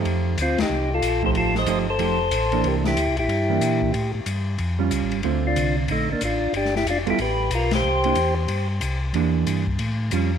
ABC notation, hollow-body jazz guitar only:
X:1
M:4/4
L:1/8
Q:"Swing" 1/4=185
K:Cmix
V:1 name="Hollow-body jazz guitar"
[F,A,_EG]2 z4 z [F,A,EG]- | [F,A,_EG]2 [F,A,EG] z [F,A,EG] z2 [=E,B,D]- | [E,B,D]2 z3 [E,B,D]3 | z4 z [G,^C^E]3 |
[D,A,CF]4- [D,A,CF] z3 | z3 [G,=B,FA] z4 | z [B,DE] z6 | [E,B,DG]3 z3 [G,^CF] z |]